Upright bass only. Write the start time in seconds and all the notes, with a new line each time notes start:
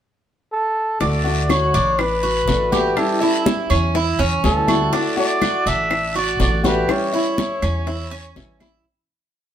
1.01 D2
1.74 A1
2.48 A1
3.70 E2
4.19 E2
4.44 D2
5.66 A1
6.40 A1
7.62 E2
8.36 A1